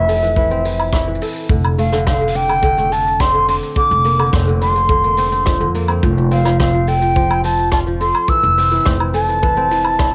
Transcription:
0.00 1.17 F1 medium
0.00 0.22 E3 medium
0.00 0.51 C4 medium
0.00 0.93 E4 medium
0.00 1.22 E5 loud
0.09 1.22 A4 medium
0.09 open hi-hat medium
0.09 shaker medium
0.23 0.36 E3 medium
0.23 shaker medium
0.36 0.64 E3 loud
0.36 kick medium
0.36 shaker medium
0.51 2.07 C4 medium
0.51 shaker medium
0.65 1.06 E3 medium
0.65 open hi-hat loud
0.65 shaker medium
0.79 low woodblock medium
0.79 shaker medium
0.93 2.50 E4 medium
0.93 kick loud
0.93 cross-stick loud
0.93 shaker medium
1.08 1.55 E3 medium
1.15 shaker soft
1.22 2.54 A4 medium
1.22 open hi-hat loud
1.22 shaker medium
1.25 shaker medium
1.29 shaker medium
1.33 shaker medium
1.36 shaker medium
1.36 shaker soft
1.40 shaker soft
1.43 shaker soft
1.47 3.57 F1 loud
1.47 kick loud
1.47 shaker soft
1.50 1.91 D3 medium
1.50 shaker medium
1.65 low woodblock medium
1.65 shaker medium
1.78 2.77 A3 medium
1.78 2.05 F5 medium
1.78 open hi-hat medium
1.78 shaker medium
1.92 2.20 D3 loud
1.92 cross-stick soft
1.92 shaker medium
2.07 3.20 C4 medium
2.07 2.37 F5 medium
2.07 kick loud
2.07 cross-stick loud
2.07 shaker medium
2.21 2.48 D3 medium
2.21 shaker soft
2.27 open hi-hat loud
2.35 3.48 D4 medium
2.35 2.94 G5 loud
2.35 shaker medium
2.49 2.62 D3 medium
2.49 low woodblock medium
2.49 shaker medium
2.63 2.91 D3 loud
2.63 kick loud
2.63 shaker medium
2.78 4.11 A3 medium
2.78 shaker medium
2.92 3.33 D3 medium
2.92 3.22 A5 loud
2.92 open hi-hat medium
2.92 shaker medium
3.07 shaker medium
3.20 4.33 C4 medium
3.20 3.49 C6 loud
3.20 kick loud
3.20 cross-stick loud
3.20 shaker medium
3.34 3.76 D3 medium
3.34 shaker soft
3.48 4.61 D4 medium
3.48 3.55 C6 loud
3.48 open hi-hat loud
3.48 shaker loud
3.63 shaker medium
3.76 4.18 D3 medium
3.76 4.30 D6 loud
3.76 kick loud
3.76 shaker medium
3.91 4.29 F1 medium
3.91 shaker soft
4.04 5.03 A#3 medium
4.04 open hi-hat medium
4.04 shaker medium
4.19 4.46 D3 loud
4.19 low woodblock medium
4.19 shaker soft
4.26 shaker soft
4.33 5.62 F1 medium
4.33 5.18 C4 medium
4.33 kick loud
4.33 cross-stick loud
4.33 shaker soft
4.33 shaker medium
4.40 shaker soft
4.47 4.74 D3 medium
4.47 shaker soft
4.61 6.29 D4 medium
4.61 5.71 C6 loud
4.61 open hi-hat medium
4.61 shaker medium
4.75 4.88 D3 medium
4.75 shaker medium
4.89 5.59 D3 loud
4.89 kick loud
4.89 shaker medium
5.04 5.74 A#3 medium
5.04 shaker soft
5.17 5.31 C4 medium
5.17 open hi-hat medium
5.17 shaker medium
5.32 5.88 C4 medium
5.32 shaker medium
5.46 5.65 F3 medium
5.46 kick loud
5.46 cross-stick medium
5.60 5.98 F2 medium
5.60 6.08 D3 medium
5.60 shaker medium
5.74 6.93 A#3 medium
5.74 open hi-hat loud
5.74 shaker medium
5.88 6.31 C4 medium
5.88 low woodblock medium
5.88 shaker medium
6.03 8.11 F1 loud
6.03 6.44 F3 medium
6.03 kick loud
6.03 shaker medium
6.18 shaker medium
6.31 6.59 C4 medium
6.31 6.58 F5 medium
6.31 open hi-hat medium
6.31 shaker medium
6.45 6.72 F3 loud
6.45 cross-stick soft
6.45 low woodblock medium
6.45 shaker medium
6.60 7.30 C4 medium
6.60 6.90 F5 medium
6.60 kick loud
6.60 cross-stick loud
6.60 shaker medium
6.74 7.00 F3 medium
6.74 shaker soft
6.87 8.00 A4 medium
6.87 7.44 G5 medium
6.87 open hi-hat medium
6.87 shaker medium
7.01 7.15 F3 medium
7.01 shaker medium
7.16 7.43 F3 loud
7.16 kick loud
7.16 shaker medium
7.30 8.57 C4 medium
7.30 low woodblock medium
7.30 shaker soft
7.44 7.85 F3 medium
7.44 7.71 A5 medium
7.44 open hi-hat medium
7.44 shaker medium
7.59 shaker medium
7.72 8.35 F4 medium
7.72 7.79 A5 loud
7.72 kick loud
7.72 cross-stick medium
7.72 shaker medium
7.87 8.34 F3 medium
7.87 shaker soft
8.00 9.14 A4 medium
8.00 8.30 C6 loud
8.00 open hi-hat medium
8.00 shaker medium
8.15 low woodblock medium
8.15 shaker medium
8.28 8.70 E3 medium
8.28 8.86 E6 loud
8.28 kick medium
8.28 shaker medium
8.43 8.81 F1 medium
8.43 shaker soft
8.58 8.85 C4 medium
8.58 open hi-hat medium
8.58 shaker medium
8.72 8.99 E3 loud
8.72 shaker soft
8.85 10.15 F1 medium
8.85 9.57 C4 medium
8.85 kick loud
8.85 cross-stick medium
8.85 shaker medium
9.00 9.27 E3 medium
9.00 low woodblock medium
9.00 shaker medium
9.14 10.15 A4 medium
9.14 10.15 A5 loud
9.14 open hi-hat medium
9.14 shaker medium
9.29 9.41 E3 medium
9.29 shaker soft
9.43 9.70 E3 loud
9.43 kick medium
9.43 shaker medium
9.57 10.15 C4 medium
9.57 shaker medium
9.71 10.12 E3 medium
9.71 open hi-hat medium
9.71 shaker medium
9.84 low woodblock medium
9.84 shaker medium
9.99 10.15 E4 medium
9.99 kick loud
9.99 cross-stick medium
9.99 shaker medium

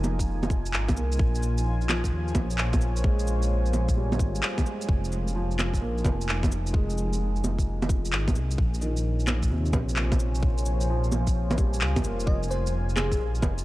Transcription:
0.00 1.16 F3 medium
0.00 0.47 G#3 medium
0.00 0.97 A#3 medium
0.00 1.16 D#4 medium
0.00 1.21 D#4 medium
0.00 8.54 F4 medium
0.00 8.54 G#5 loud
0.00 low bongo soft
0.00 cabasa medium
0.04 0.75 F1 medium
0.19 kick medium
0.19 shaker medium
0.43 low bongo medium
0.43 shaker soft
0.50 kick loud
0.50 cabasa medium
0.66 shaker medium
0.74 0.98 G#1 medium
0.74 clap loud
0.88 kick loud
0.88 low bongo medium
0.88 shaker soft
0.96 1.18 C2 medium
0.96 1.40 A#3 medium
0.96 cabasa medium
1.12 shaker medium
1.19 2.11 A#1 loud
1.19 4.85 A#3 medium
1.19 4.85 C5 medium
1.19 4.85 C#5 medium
1.19 kick loud
1.35 shaker soft
1.43 cabasa medium
1.58 shaker medium
1.81 shaker soft
1.89 3.24 F3 medium
1.89 clap loud
1.89 low bongo soft
1.89 cabasa medium
2.04 kick medium
2.04 shaker medium
2.12 2.34 D#2 medium
2.28 shaker soft
2.35 3.72 A#1 medium
2.35 kick loud
2.35 low bongo medium
2.35 cabasa medium
2.50 shaker medium
2.58 clap loud
2.73 kick loud
2.73 low bongo soft
2.73 shaker soft
2.81 cabasa medium
2.96 shaker medium
3.04 4.39 G#3 medium
3.04 kick loud
3.19 shaker soft
3.27 cabasa medium
3.42 shaker medium
3.66 shaker soft
3.73 4.19 A#1 medium
3.73 low bongo soft
3.73 cabasa medium
3.89 kick medium
3.89 shaker medium
3.96 5.08 G3 medium
4.12 low bongo medium
4.12 shaker soft
4.19 4.41 G#1 loud
4.19 kick loud
4.19 cabasa medium
4.35 shaker medium
4.43 clap loud
4.58 kick loud
4.58 low bongo soft
4.58 shaker soft
4.65 5.09 G#3 medium
4.65 cabasa medium
4.82 shaker medium
4.88 5.80 F1 loud
4.88 8.54 D#4 medium
4.88 kick loud
5.04 shaker soft
5.12 cabasa medium
5.28 shaker soft
5.35 6.70 F3 medium
5.51 shaker soft
5.59 clap loud
5.59 low bongo soft
5.59 cabasa medium
5.74 kick medium
5.74 shaker medium
5.81 6.03 A#1 medium
5.81 7.16 A#3 medium
5.98 shaker soft
6.05 7.42 F1 medium
6.05 kick loud
6.05 low bongo medium
6.05 cabasa medium
6.21 shaker soft
6.29 clap loud
6.43 kick loud
6.43 low bongo medium
6.43 shaker soft
6.52 cabasa medium
6.67 shaker medium
6.73 8.08 G#3 medium
6.73 kick loud
6.90 shaker soft
6.98 cabasa medium
7.13 shaker medium
7.36 shaker soft
7.44 8.14 F1 medium
7.44 low bongo soft
7.44 cabasa medium
7.59 kick medium
7.59 shaker medium
7.82 low bongo medium
7.82 shaker soft
7.89 kick loud
7.89 cabasa medium
8.05 shaker medium
8.12 8.37 G#1 medium
8.12 clap loud
8.28 kick loud
8.28 low bongo medium
8.28 shaker soft
8.35 8.57 C2 medium
8.35 cabasa medium
8.51 shaker medium
8.58 9.50 A#1 loud
8.58 12.24 A#3 medium
8.58 13.65 F4 medium
8.58 12.24 C5 medium
8.58 12.24 C#5 loud
8.58 13.65 G#5 medium
8.58 kick loud
8.74 shaker soft
8.81 10.16 D#3 medium
8.81 cabasa medium
8.97 shaker medium
9.20 shaker soft
9.27 10.63 A#2 medium
9.27 clap loud
9.27 low bongo soft
9.27 cabasa medium
9.43 kick medium
9.43 shaker medium
9.50 9.72 D#2 medium
9.50 10.86 C3 medium
9.66 shaker soft
9.73 11.11 A#1 medium
9.73 kick loud
9.73 low bongo medium
9.73 cabasa medium
9.89 shaker medium
9.96 clap loud
10.12 kick loud
10.12 low bongo medium
10.12 shaker soft
10.20 cabasa medium
10.35 shaker medium
10.43 kick loud
10.58 shaker soft
10.66 cabasa medium
10.81 shaker medium
10.90 12.24 F3 medium
11.04 shaker soft
11.12 11.83 A#1 medium
11.12 low bongo soft
11.12 cabasa medium
11.27 kick medium
11.27 shaker medium
11.51 low bongo medium
11.51 shaker soft
11.58 12.47 G3 medium
11.58 kick loud
11.58 cabasa medium
11.74 shaker medium
11.81 12.06 C#2 medium
11.81 clap loud
11.96 kick loud
11.96 low bongo medium
11.96 shaker soft
12.04 12.26 F1 medium
12.04 12.47 A#3 medium
12.04 cabasa medium
12.20 shaker medium
12.26 13.19 F1 loud
12.26 13.65 D#4 medium
12.26 12.48 D#5 medium
12.26 kick loud
12.43 shaker soft
12.50 12.75 C5 medium
12.50 cabasa medium
12.67 shaker medium
12.89 shaker soft
12.96 13.35 G#4 medium
12.96 clap loud
12.96 low bongo soft
12.96 cabasa medium
13.12 kick medium
13.12 shaker medium
13.19 13.41 A#1 medium
13.35 shaker soft
13.42 13.65 F1 medium
13.42 kick loud
13.42 low bongo medium
13.42 cabasa medium
13.58 shaker medium

